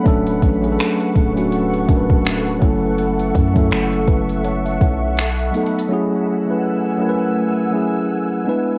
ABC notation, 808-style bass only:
X:1
M:4/4
L:1/8
Q:"Swing 16ths" 1/4=82
K:F#m
V:1 name="808-style bass" clef=bass
D,,, A,,, z D,,,2 D,,,2 F,,,- | F,,, F,, F,,, F,,,2 B,,,2 z | z8 |]